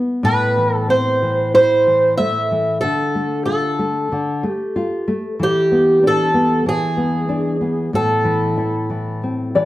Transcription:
Already playing: B3
0.23 A2 B4
0.57 E3
0.76 A4
0.89 C4 C5
1.22 E3
1.54 E4 C5
1.87 E3
2.17 A3 E5
2.51 E3
2.81 D3 A4
3.15 A3
3.46 F4 A4
3.79 A3
4.12 D3
4.43 A3
4.50 G4
4.76 F4
5.08 A3
5.39 E3 G4
5.72 B3
6.03 D4 A4
6.34 B3
6.66 E3 G#4
6.97 B3
7.29 D4
7.61 B3
7.93 A2 A4
8.25 E3
8.58 E4
8.90 E3
9.23 C4
9.55 E3 D5

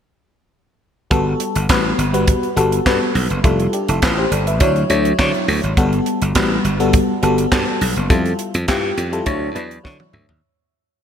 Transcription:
1.10 G1 G3 B3 F#4 A4, kick, closed hi-hat
1.40 closed hi-hat
1.55 G1, closed hi-hat
1.69 A1 G3 B3 F#4 B4, kick, snare, clap, closed hi-hat
1.98 G1, closed hi-hat
2.13 G3 B3 F#4 B4, closed hi-hat
2.28 kick, closed hi-hat
2.43 closed hi-hat
2.56 G1 G3 B3 F#4 A4, closed hi-hat
2.72 closed hi-hat
2.86 G2 G3 B3 F#4 B4, kick, snare, clap, closed hi-hat
3.15 B1, open hi-hat
3.30 F#1, closed hi-hat
3.44 F1 G3 E4 F4 A4, kick, closed hi-hat
3.60 closed hi-hat
3.73 D4 G4, closed hi-hat
3.88 F1 E4 A4, closed hi-hat
4.02 A1 F4 B4, kick, snare, clap, closed hi-hat
4.18 G4 C5
4.31 G1 A4 D5, closed hi-hat
4.47 B4 E5, closed hi-hat
4.60 D2 F#3 D4 E4 C#5, kick, closed hi-hat
4.76 closed hi-hat
4.90 D2 F#3 D4 E4 C#5, closed hi-hat
5.05 closed hi-hat
5.19 D3 F#3 D4 E4 C#5, kick, snare, clap, closed hi-hat
5.34 closed hi-hat
5.48 D2, open hi-hat
5.63 G#1, closed hi-hat
5.77 G1 G3 B3 F#4 A4, kick, closed hi-hat
5.93 closed hi-hat
6.06 closed hi-hat
6.22 G1, closed hi-hat
6.35 A1 G3 B3 F#4 B4, kick, snare, clap, closed hi-hat
6.64 G1, closed hi-hat
6.80 G3 B3 F#4 A4, closed hi-hat
6.93 kick, closed hi-hat
7.22 G1 G3 B3 F#4 A4, closed hi-hat
7.38 closed hi-hat
7.52 G2 G3 B3 F#4 A4, kick, snare, clap, closed hi-hat
7.81 B1, open hi-hat
7.96 F#1, closed hi-hat
8.10 F2 G3 E4 F4 A4, kick, closed hi-hat
8.26 closed hi-hat
8.39 closed hi-hat
8.54 F2, closed hi-hat
8.68 G2 G3 E4 F4 G4, kick, snare, clap, closed hi-hat
8.97 F2, closed hi-hat
9.12 G3 E4 F4 A4, closed hi-hat
9.26 D2 F#3 D4 E4 C#5, kick, closed hi-hat
9.55 E2 F#3 D4 E4 B4 A5, closed hi-hat
9.71 closed hi-hat
9.83 D3 F#3 D4 E4 C#5 F#5, kick, snare
10.00 high tom
10.13 D2 E5, mid tom
10.29 D#2, floor tom

